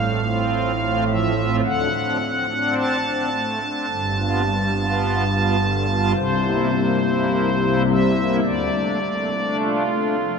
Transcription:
Already playing: A1 A2 A3 F5
0.23 C4 F4
0.80 C4 F4
1.08 F3 E5
1.38 C4 F4
1.64 D2 D3 F#5
1.94 C4 D4
2.21 C4
2.50 C4 D4
2.75 A5
3.05 C4 D4
3.34 A3
3.62 C4 D4
3.90 G1 G2
4.17 B3 F4
4.45 G3
4.75 B3 F4
5.32 B3 F4
5.61 D3
5.88 B3 F4
6.16 C2 C3 C5
6.44 A#3 E4
6.73 A#3
7.01 A#3 E4
7.59 A#3 E4
7.88 G3 E5
8.16 A#3 E4
8.43 D2 D3 D5
8.73 A3 D4
9.04 A3
9.33 A3 D4
9.62 F4
9.91 A3 D4
10.21 F3

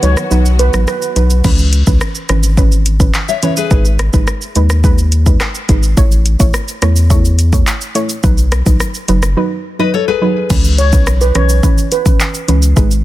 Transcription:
Already playing: D#3 F#3 B3 F#4
0.03 C#2 F#3 D#4 B4 C#5, closed hi-hat, shaker
0.17 cross-stick, shaker
0.31 B1 F#3 D#4 B4, shaker
0.46 shaker
0.59 B4, closed hi-hat, shaker
0.73 A1 F#3 D#4 B4, cross-stick, shaker
0.88 B4, cross-stick, shaker
1.02 shaker
1.16 B1 F#3 D#4 B4, closed hi-hat, shaker
1.30 shaker
1.44 C#2 E3 C#4 B4, kick, crash, shaker
1.58 shaker
1.73 closed hi-hat, shaker
1.87 C#2 E3 C#4 B4, kick, shaker
2.01 cross-stick, shaker
2.15 shaker
2.29 G#1 E3 C#4 B4, cross-stick, closed hi-hat, shaker
2.43 shaker
2.57 E3 C#4 B4, kick, shaker
2.72 shaker
2.86 closed hi-hat, shaker
3.00 E3 C#4 B4, kick, shaker
3.14 clap, shaker
3.29 C#5 E5, shaker
3.43 E3 C#4 B4 C#5, closed hi-hat, shaker
3.57 G#4 B4, shaker
3.71 G#1 G#3 D#4 B4, kick, shaker
3.85 shaker
3.99 cross-stick, closed hi-hat, shaker
4.13 G#1 G#3 D#4 B4, kick, shaker
4.27 cross-stick, shaker
4.42 shaker
4.56 D#2 G#3 D#4 B4, closed hi-hat, shaker
4.70 cross-stick, shaker
4.84 G#3 D#4 B4, kick, shaker
4.98 shaker
5.12 closed hi-hat, shaker
5.26 G#3 D#4 B4, kick, shaker
5.40 cross-stick, clap, shaker
5.55 shaker
5.69 G#1 G#3 D#4 B4, kick, closed hi-hat, shaker
5.83 shaker
5.97 A1 A3 E4 C#5, kick, shaker
6.11 shaker
6.26 closed hi-hat, shaker
6.39 A1 A3 E4 C#5, kick, shaker
6.54 cross-stick, shaker
6.68 shaker
6.82 E2 A3 E4 C#5, cross-stick, closed hi-hat, shaker
6.96 shaker
7.10 A3 E4 C#5, kick, shaker
7.25 shaker
7.39 closed hi-hat, shaker
7.53 A3 E4 C#5, kick, shaker
7.67 clap, shaker
7.81 shaker
7.95 A3 E4 C#5, closed hi-hat, shaker
8.09 shaker
8.23 B1 F#3 D#4 B4, kick, shaker
8.38 shaker
8.52 cross-stick, closed hi-hat, shaker
8.66 B1 F#3 D#4 B4, kick, shaker
8.80 cross-stick, shaker
8.94 shaker
9.08 F#1 F#3 D#4 B4, closed hi-hat, shaker
9.23 cross-stick, shaker
9.37 F#3 D#4 B4
9.79 F#3 D#4 B4 D#5
9.94 A4 C#5
10.08 G#4 B4
10.21 F#3 D#4 B4
10.50 C#2 E3 C#4 B4, kick, crash, shaker
10.64 shaker
10.78 C#5, closed hi-hat, shaker
10.92 B1 E3 C#4 B4, kick, shaker
11.07 cross-stick, shaker
11.21 B4, shaker
11.35 B1 E3 C#4 B4 C#5, cross-stick, closed hi-hat, shaker
11.49 shaker
11.63 E3 C#4 B4, kick, shaker
11.78 shaker
11.92 B4, closed hi-hat, shaker
12.05 E3 C#4 B4, kick, shaker
12.20 clap, shaker
12.34 shaker
12.48 C#2 E3 C#4 B4, closed hi-hat, shaker
12.62 shaker
12.76 G#1 G#3 D#4 B4, kick, shaker
12.91 shaker

